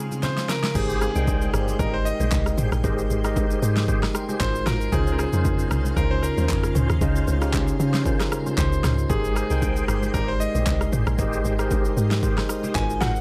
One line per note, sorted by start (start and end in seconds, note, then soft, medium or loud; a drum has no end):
0.00 0.71 C#3 medium
0.00 0.71 G#3 medium
0.00 0.71 C4 medium
0.00 0.72 D#4 medium
0.00 0.72 F4 medium
0.00 0.45 G#4 medium
0.00 0.71 F5 medium
0.00 0.72 G5 medium
0.12 low bongo medium
0.12 shaker soft
0.23 0.47 C5 medium
0.23 snare medium
0.23 high bongo medium
0.23 low conga medium
0.23 shaker medium
0.38 snare medium
0.38 shaker medium
0.49 0.76 A#4 medium
0.49 snare medium
0.49 shaker medium
0.63 snare medium
0.63 low bongo medium
0.63 shaker soft
0.75 1.10 G#1 loud
0.75 1.07 G#3 medium
0.75 13.21 G#3 medium
0.75 1.07 D#4 medium
0.75 1.12 G4 medium
0.75 1.07 G4 medium
0.75 0.99 G#4 medium
0.75 1.12 G#4 medium
0.75 1.08 A#4 medium
0.75 12.71 C5 medium
0.75 1.13 C5 loud
0.75 1.08 C5 medium
0.75 4.37 G5 medium
0.75 kick loud
0.75 crash loud
0.75 low conga medium
0.75 shaker medium
0.90 shaker medium
1.01 1.75 G#4 medium
1.01 cross-stick medium
1.01 shaker medium
1.15 1.48 C2 medium
1.15 1.68 G#3 medium
1.15 1.68 D#4 medium
1.15 1.51 G#4 medium
1.15 1.68 A#4 medium
1.15 1.51 C5 medium
1.15 1.22 D5 medium
1.15 1.51 G5 medium
1.15 1.68 G5 medium
1.15 shaker medium
1.23 1.72 D#5 medium
1.28 kick loud
1.28 high bongo medium
1.28 shaker medium
1.42 shaker medium
1.53 1.76 G1 loud
1.53 1.78 G4 medium
1.53 1.78 G#4 medium
1.53 1.78 C5 medium
1.53 cross-stick loud
1.53 shaker medium
1.68 low bongo medium
1.68 shaker soft
1.79 2.14 G#1 loud
1.79 2.63 G#3 medium
1.79 2.64 D#4 medium
1.79 1.93 G4 medium
1.79 2.64 G4 medium
1.79 1.93 G#4 medium
1.79 1.94 A#4 medium
1.79 2.64 A#4 medium
1.79 1.93 C5 loud
1.79 2.64 D#5 medium
1.79 kick loud
1.79 low conga medium
1.79 shaker medium
1.94 2.06 C5 medium
2.05 2.54 D#5 loud
2.05 shaker loud
2.20 2.30 A#1 medium
2.20 2.31 G4 medium
2.20 2.31 G#4 medium
2.20 2.31 C5 medium
2.20 low bongo medium
2.20 shaker medium
2.31 2.54 C2 loud
2.31 kick loud
2.31 clap medium
2.31 high bongo medium
2.31 low conga medium
2.31 shaker medium
2.46 cross-stick medium
2.46 shaker medium
2.58 2.70 G#1 loud
2.58 2.71 G4 medium
2.58 2.71 G#4 medium
2.58 2.71 C5 medium
2.58 mid tom medium
2.58 shaker medium
2.72 2.82 A#1 medium
2.72 cross-stick medium
2.72 shaker soft
2.84 3.06 G#1 loud
2.84 3.16 G#3 medium
2.84 3.16 D#4 medium
2.84 3.21 G4 loud
2.84 3.16 G4 medium
2.84 3.21 G#4 medium
2.84 3.16 A#4 medium
2.84 3.21 C5 loud
2.84 3.17 D#5 loud
2.84 kick loud
2.84 low conga medium
2.84 shaker medium
2.98 shaker medium
3.10 3.55 G#1 loud
3.10 shaker medium
3.24 3.76 G#3 medium
3.24 3.77 D#4 medium
3.24 3.59 G4 medium
3.24 3.77 G4 medium
3.24 3.60 G#4 medium
3.24 3.77 A#4 medium
3.24 3.60 C5 medium
3.24 3.77 D#5 loud
3.24 cross-stick medium
3.24 shaker medium
3.36 kick medium
3.36 high bongo medium
3.36 shaker medium
3.50 shaker medium
3.62 4.07 G#2 loud
3.62 3.86 G4 medium
3.62 3.87 G#4 medium
3.62 3.87 C5 medium
3.62 shaker medium
3.77 snare medium
3.77 low bongo medium
3.77 shaker soft
3.88 4.01 G4 medium
3.88 4.01 G#4 medium
3.88 4.01 C5 loud
3.88 4.14 C5 medium
3.88 4.13 G5 medium
3.88 kick loud
3.88 low conga medium
3.88 shaker medium
4.03 cross-stick medium
4.03 snare medium
4.15 4.29 G5 medium
4.15 4.28 C6 medium
4.15 cross-stick loud
4.15 shaker loud
4.29 4.39 G4 medium
4.29 4.39 G#4 medium
4.29 4.40 C5 medium
4.29 4.54 D#5 medium
4.29 4.54 G#5 medium
4.29 low bongo medium
4.29 shaker medium
4.40 4.63 G#1 loud
4.40 4.83 G#3 medium
4.40 4.83 D#4 medium
4.40 4.83 F4 medium
4.40 4.84 F#4 medium
4.40 4.84 A#4 medium
4.40 4.65 C5 loud
4.40 4.84 C5 medium
4.40 kick medium
4.40 clap medium
4.40 high bongo medium
4.40 low conga medium
4.40 shaker medium
4.55 shaker medium
4.66 4.89 G#1 medium
4.66 4.79 F4 medium
4.66 4.80 F#4 medium
4.66 4.93 A#4 medium
4.66 4.80 A#4 medium
4.66 4.80 C5 medium
4.66 cross-stick medium
4.66 snare medium
4.66 mid tom loud
4.66 shaker medium
4.81 shaker soft
4.92 5.27 C#2 loud
4.92 5.24 C#3 medium
4.92 9.06 C#3 medium
4.92 5.30 C#4 medium
4.92 5.25 C#4 medium
4.92 5.25 D#4 medium
4.92 9.06 F4 medium
4.92 5.30 F4 medium
4.92 5.25 F4 medium
4.92 5.13 G#4 loud
4.92 5.30 C5 loud
4.92 5.25 C5 medium
4.92 kick loud
4.92 low conga medium
4.92 shaker medium
5.07 shaker medium
5.12 5.19 A#4 medium
5.18 5.99 G#4 medium
5.18 cross-stick medium
5.18 shaker medium
5.33 5.65 F2 medium
5.33 5.85 C#3 medium
5.33 5.68 C#4 medium
5.33 5.85 C#4 medium
5.33 5.86 D#4 medium
5.33 5.68 F4 medium
5.33 5.86 F4 medium
5.33 5.86 A#4 medium
5.33 5.68 C5 medium
5.33 shaker medium
5.45 kick loud
5.45 high bongo medium
5.45 shaker medium
5.59 shaker medium
5.71 5.93 C2 loud
5.71 5.95 C#4 medium
5.71 5.95 F4 medium
5.71 5.95 C5 medium
5.71 cross-stick loud
5.71 shaker medium
5.85 low bongo medium
5.85 shaker soft
5.96 6.31 C#2 loud
5.96 6.81 C#3 medium
5.96 6.81 C#4 medium
5.96 6.10 C#4 loud
5.96 6.81 D#4 medium
5.96 6.10 F4 medium
5.96 6.81 F4 medium
5.96 6.12 A#4 medium
5.96 6.10 C5 loud
5.96 6.82 C5 medium
5.96 kick loud
5.96 low conga medium
5.96 shaker medium
6.11 6.23 C5 medium
6.23 6.71 A#4 medium
6.23 shaker medium
6.37 6.51 D#2 medium
6.37 6.48 C#4 medium
6.37 6.48 F4 medium
6.37 6.48 C5 medium
6.37 low bongo medium
6.37 shaker medium
6.49 6.72 F2 medium
6.49 kick loud
6.49 clap medium
6.49 high bongo medium
6.49 low conga medium
6.49 shaker medium
6.63 cross-stick medium
6.63 shaker medium
6.75 6.88 C#2 loud
6.75 6.88 C#4 medium
6.75 6.88 F4 medium
6.75 6.88 C5 medium
6.75 mid tom medium
6.75 shaker medium
6.90 7.00 D#2 medium
6.90 cross-stick medium
6.90 shaker soft
7.01 7.24 C#2 loud
7.01 7.33 C#3 medium
7.01 7.38 C#4 medium
7.01 7.33 C#4 medium
7.01 7.33 D#4 medium
7.01 7.38 F4 medium
7.01 7.34 F4 medium
7.01 7.39 C5 loud
7.01 7.34 D#5 loud
7.01 kick loud
7.01 low conga medium
7.01 shaker medium
7.16 shaker medium
7.27 7.72 C#2 loud
7.27 high bongo medium
7.27 shaker medium
7.41 7.94 C#3 medium
7.41 7.77 C#4 medium
7.41 7.94 C#4 medium
7.41 7.94 D#4 medium
7.41 7.77 F4 medium
7.41 7.94 F4 medium
7.41 7.95 G4 loud
7.41 7.77 C5 medium
7.41 cross-stick medium
7.41 shaker medium
7.53 kick loud
7.53 clap medium
7.53 high bongo medium
7.53 shaker medium
7.68 shaker medium
7.79 8.24 C#3 loud
7.79 8.04 C#4 medium
7.79 8.04 F4 medium
7.79 8.04 C5 medium
7.79 shaker medium
7.94 snare medium
7.94 high bongo medium
7.94 low bongo medium
7.94 shaker medium
8.05 8.90 C#3 medium
8.05 8.19 C#4 medium
8.05 8.90 C#4 medium
8.05 8.90 D#4 medium
8.05 8.19 F4 medium
8.05 8.90 F4 medium
8.05 8.90 A#4 medium
8.05 8.19 C5 loud
8.05 kick loud
8.05 low conga medium
8.05 shaker medium
8.20 cross-stick medium
8.20 snare medium
8.20 shaker medium
8.32 cross-stick loud
8.32 shaker medium
8.46 8.57 C#4 medium
8.46 8.57 F4 medium
8.46 8.57 C5 medium
8.46 low bongo medium
8.46 shaker medium
8.57 8.80 C#2 loud
8.57 9.11 C5 medium
8.57 kick loud
8.57 clap medium
8.57 high bongo medium
8.57 low conga medium
8.57 shaker medium
8.73 shaker medium
8.84 9.06 C#2 medium
8.84 8.97 C#4 medium
8.84 8.97 F4 medium
8.84 8.97 C5 medium
8.84 cross-stick medium
8.84 snare medium
8.84 mid tom loud
8.84 shaker medium
8.98 shaker soft
9.09 9.45 G#1 loud
9.09 9.42 G#3 medium
9.09 9.42 D#4 medium
9.09 9.47 G4 medium
9.09 9.42 G4 medium
9.09 9.34 G#4 medium
9.09 9.47 G#4 medium
9.09 9.42 A#4 medium
9.09 9.47 C5 loud
9.09 9.43 C5 medium
9.09 11.17 G5 medium
9.09 kick loud
9.09 low conga medium
9.09 shaker medium
9.24 shaker medium
9.36 10.10 G#4 medium
9.36 cross-stick medium
9.36 shaker medium
9.50 9.83 C2 medium
9.50 10.02 G#3 medium
9.50 10.03 D#4 medium
9.50 9.86 G#4 medium
9.50 10.03 A#4 medium
9.50 9.86 C5 medium
9.50 10.03 C5 medium
9.50 9.85 G5 medium
9.50 10.03 G5 medium
9.50 shaker medium
9.62 kick medium
9.62 high bongo medium
9.62 shaker medium
9.76 shaker medium
9.88 10.11 G1 medium
9.88 10.12 G4 medium
9.88 10.13 G#4 medium
9.88 10.13 C5 medium
9.88 cross-stick loud
9.88 shaker medium
10.03 low bongo medium
10.03 shaker soft
10.14 10.49 G#1 loud
10.14 10.98 G#3 medium
10.14 10.98 D#4 medium
10.14 10.27 G4 medium
10.14 10.99 G4 medium
10.14 10.27 G#4 medium
10.14 10.29 A#4 medium
10.14 10.99 A#4 medium
10.14 10.28 C5 loud
10.14 10.22 D5 medium
10.14 kick loud
10.14 low conga medium
10.14 shaker medium
10.22 11.02 D#5 medium
10.28 10.39 C5 loud
10.40 10.89 D#5 loud
10.40 shaker loud
10.55 10.65 A#1 medium
10.55 10.65 G4 medium
10.55 10.66 G#4 medium
10.55 10.66 C5 medium
10.55 low bongo medium
10.55 shaker medium
10.66 10.89 C2 loud
10.66 kick loud
10.66 clap medium
10.66 high bongo medium
10.66 low conga medium
10.66 shaker medium
10.81 cross-stick medium
10.81 shaker medium
10.92 11.05 G#1 loud
10.92 11.05 G4 medium
10.92 11.06 G#4 medium
10.92 11.06 C5 medium
10.92 mid tom medium
10.92 shaker medium
11.07 11.17 A#1 medium
11.07 cross-stick loud
11.07 shaker soft
11.18 11.41 G#1 loud
11.18 11.50 G#3 medium
11.18 11.51 D#4 medium
11.18 12.74 D#4 medium
11.18 11.56 G4 loud
11.18 11.51 G4 medium
11.18 11.56 G#4 medium
11.18 11.51 A#4 medium
11.18 11.56 C5 loud
11.18 11.51 D#5 loud
11.18 kick loud
11.18 low conga medium
11.18 shaker medium
11.33 shaker medium
11.45 11.89 G#1 loud
11.45 shaker medium
11.59 12.11 G#3 medium
11.59 12.11 D#4 medium
11.59 11.94 G4 medium
11.59 12.12 G4 medium
11.59 11.94 G#4 medium
11.59 12.12 A#4 medium
11.59 11.94 C5 medium
11.59 12.12 C5 loud
11.59 cross-stick medium
11.59 shaker medium
11.71 kick loud
11.71 high bongo medium
11.71 shaker medium
11.85 shaker medium
11.97 12.41 G#2 medium
11.97 12.21 G4 medium
11.97 12.21 G#4 medium
11.97 12.21 C5 medium
11.97 shaker medium
12.11 snare medium
12.11 low bongo medium
12.11 shaker medium
12.22 12.73 G#3 medium
12.22 12.74 D#4 medium
12.22 12.36 G4 medium
12.22 12.75 G4 medium
12.22 12.36 G#4 medium
12.22 12.75 A#4 medium
12.22 12.36 C5 loud
12.22 12.76 C5 loud
12.22 kick loud
12.22 low conga medium
12.22 shaker medium
12.38 cross-stick medium
12.38 snare medium
12.49 cross-stick medium
12.49 shaker loud
12.63 12.74 G4 medium
12.63 12.74 G#4 medium
12.63 12.74 C5 medium
12.63 low bongo medium
12.63 shaker medium
12.75 12.98 G#1 loud
12.75 13.18 G#3 medium
12.75 13.18 D#4 medium
12.75 13.18 F4 medium
12.75 13.18 F#4 medium
12.75 13.19 A#4 medium
12.75 12.83 B4 medium
12.75 13.21 C5 medium
12.75 13.02 G#5 loud
12.75 kick medium
12.75 clap medium
12.75 high bongo medium
12.75 low conga medium
12.75 shaker medium
12.83 13.21 C5 medium
12.90 shaker medium
13.01 13.21 G#1 medium
13.01 13.14 F4 medium
13.01 13.14 F#4 medium
13.01 13.14 A#4 medium
13.01 13.15 C5 medium
13.01 13.21 F#5 loud
13.01 cross-stick medium
13.01 snare medium
13.01 mid tom medium
13.01 shaker medium
13.16 shaker soft